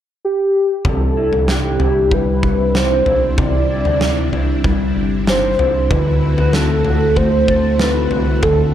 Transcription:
0.25 G4
0.84 C2 C3 G3 C4 D4 E4 A4, kick, floor tom
1.17 E4
1.32 C2, floor tom
1.48 D4 G4, snare
1.79 C2 E4, floor tom
2.11 G3 B4, kick, floor tom
2.43 kick
2.74 D4 C5, snare
3.06 B1 E4, floor tom
3.38 C2 C3 D5, kick, floor tom
3.70 E4
3.85 D2, floor tom
4.01 D4, snare
4.32 C2 E4, floor tom
4.64 G3, kick, floor tom
4.96 G1
5.27 D4 C5, snare
5.59 C2 E4, floor tom
5.90 D2 D3 A3 C4 E4 F#4 B4, kick, floor tom
6.22 E4
6.38 D2 F#4, floor tom
6.53 C4 A4, snare
6.85 D2 F#4, floor tom
7.16 A3 C5, kick, floor tom
7.48 A4, kick
7.79 C4 B4, snare
8.11 C2 F#4, floor tom
8.43 D2 D3 A4, kick, floor tom

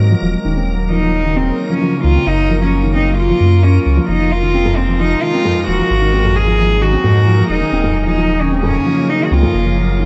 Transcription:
Already playing: G#2 C3 F#3 G#3 A#3 D#4 F#4 A#4
0.11 F3
0.22 D#1 F3
0.45 D#1 C#3 D#3 A#3 D#4 A#4
0.56 C4
0.90 F3 D#4
1.02 F3
1.24 D#3
1.36 C4
1.70 F3 C#4
1.81 F3
2.04 C#2 D#3 F4
2.15 C4
2.27 F#1 D#4 F4
2.49 F3
2.61 F3 C#4
2.83 D#3
2.95 C4 D#4
3.18 F4
3.29 F3
3.40 F#2 A#3
3.63 C#4 F4
3.74 F4
3.86 C#2
3.97 F3
4.08 F1 C3 F3 G#3 D#4
4.20 F3
4.31 F4
4.43 D#3
4.54 C4
4.65 F2
4.77 C4
4.88 F3
4.99 F3 D#4
5.22 D#3 F4
5.34 C4
5.45 F2
5.68 D#1 F3 F#4
5.79 F3
5.90 G#1 F#3 D#4 G#4
6.02 D#3
6.13 C4
6.24 F2
6.36 G#4
6.47 F3
6.58 F3
6.81 D#3 F#4
6.92 C4
7.04 F2 G#2
7.26 F3
7.38 F3
7.49 D#1 D#4
7.61 D#3
7.72 D#1 C#3 A#3 C4
7.84 F2
8.06 F3 D#4
8.18 F3
8.40 D#3 C#4
8.52 C4
8.63 F2 C#4
8.86 F3
8.97 F3
9.09 D#4
9.20 D#3
9.24 F#4
9.31 C#2 C4 F4
9.43 F2
9.54 F#1 F4
9.65 F3
9.77 F3
10.00 D#3

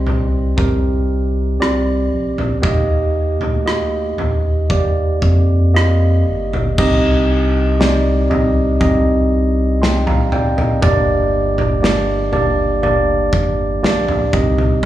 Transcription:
Already playing: C2 C3 C4 G4 C5 D#5
0.07 floor tom
0.57 C2 C4 G4 A#4, kick, floor tom
1.60 C2 C4 G4 D5, cross-stick
2.12 A#1
2.38 floor tom
2.62 D#2 A#3 D#4 G4 D#5, kick, floor tom
3.40 D2, floor tom
3.65 A#3 G4 D#5, cross-stick
4.18 D#2, floor tom
4.69 A#3 G4 D5, kick
5.22 F2, kick
5.74 A#3 G4 D#5, cross-stick
6.27 G1
6.53 floor tom
6.78 C2 C3 C4 D#4 G4 D#5, kick, floor tom, crash
7.79 C4 D#4 G4 D5, snare
8.30 C2 C4 D#4 G4 D#5, floor tom
8.80 C2 C4 D#4 G4 D#5, kick, floor tom
9.82 G5 C6, snare
10.07 F5 A#5, floor tom
10.32 D5 G5, floor tom
10.57 A#4 D#5, floor tom
10.82 G1 G2 A#3 D4 G4 D5, kick, floor tom
11.58 floor tom
11.82 A#3 D4 G4 D5, snare
12.32 G1 A#3 D4 G4 D5, floor tom
12.82 A#3 D4 G4 D5, floor tom
13.33 G1, kick
13.82 A#1 A#3 D4 G4 D5, snare
14.08 floor tom
14.33 C2 C3 C4 D#4 G4 D#5, kick, floor tom
14.58 floor tom

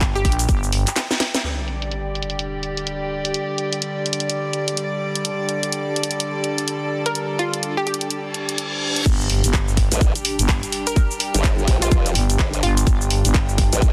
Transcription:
Already playing: G1 G5
0.01 kick, clap, closed hi-hat, cabasa
0.15 G4, cabasa
0.25 A#1 G4, kick, open hi-hat
0.32 closed hi-hat
0.39 closed hi-hat, cabasa
0.49 G1, kick, closed hi-hat, cabasa
0.63 cabasa
0.72 open hi-hat
0.87 clap, closed hi-hat, cabasa
0.96 snare, clap, closed hi-hat, cabasa
1.11 snare, cabasa
1.20 snare, open hi-hat
1.35 snare, closed hi-hat, cabasa
1.44 D3 G3 D4 G4 D5, closed hi-hat, sub drop
1.68 closed hi-hat
1.82 closed hi-hat
1.91 closed hi-hat
2.15 G4, closed hi-hat
2.23 closed hi-hat
2.30 closed hi-hat
2.39 closed hi-hat
2.63 closed hi-hat
2.77 closed hi-hat
2.87 closed hi-hat
3.25 closed hi-hat
3.34 closed hi-hat
3.58 closed hi-hat
3.73 closed hi-hat
3.82 closed hi-hat
4.06 closed hi-hat
4.13 closed hi-hat
4.20 closed hi-hat
4.30 closed hi-hat
4.53 closed hi-hat
4.68 closed hi-hat
4.77 closed hi-hat
5.15 closed hi-hat
5.25 A4, closed hi-hat
5.49 closed hi-hat
5.63 closed hi-hat
5.72 closed hi-hat
5.96 closed hi-hat
6.03 closed hi-hat
6.11 closed hi-hat
6.20 closed hi-hat
6.44 closed hi-hat
6.58 closed hi-hat
6.68 closed hi-hat
7.06 A#4, closed hi-hat
7.15 closed hi-hat
7.39 F4, closed hi-hat
7.54 closed hi-hat
7.63 closed hi-hat
7.77 G4
7.87 G4, closed hi-hat
7.94 closed hi-hat
8.01 closed hi-hat
8.10 closed hi-hat, reverse cymbal
8.34 closed hi-hat
8.49 closed hi-hat
8.58 closed hi-hat
8.96 closed hi-hat
9.06 G1 G3 D4 G4, kick, crash, impact, cabasa
9.20 cabasa
9.30 open hi-hat
9.44 G1, closed hi-hat, cabasa
9.53 kick, clap, cabasa
9.68 cabasa
9.77 kick, open hi-hat
9.92 A1, closed hi-hat, cabasa
10.01 kick, cabasa
10.15 closed hi-hat, cabasa
10.25 open hi-hat
10.39 G1 G5, closed hi-hat, cabasa
10.49 kick, clap, cabasa
10.63 closed hi-hat, cabasa
10.72 open hi-hat
10.87 A#4, closed hi-hat, cabasa
10.96 kick, cabasa
11.11 cabasa
11.20 open hi-hat
11.34 G1, closed hi-hat, cabasa
11.44 kick, clap, cabasa
11.59 cabasa
11.68 A#1, kick, open hi-hat
11.82 F4, closed hi-hat, cabasa
11.92 F1, kick, cabasa
12.06 closed hi-hat, cabasa
12.15 G1, open hi-hat
12.30 closed hi-hat, cabasa
12.39 G1, kick, clap, cabasa
12.54 closed hi-hat, cabasa
12.63 G1 F4, open hi-hat
12.77 closed hi-hat, cabasa
12.87 G1 F4, kick, cabasa
13.01 cabasa
13.11 open hi-hat
13.25 G1, closed hi-hat, cabasa
13.34 kick, clap, cabasa
13.49 cabasa
13.58 kick, open hi-hat
13.73 A1, closed hi-hat, cabasa
13.82 kick, cabasa

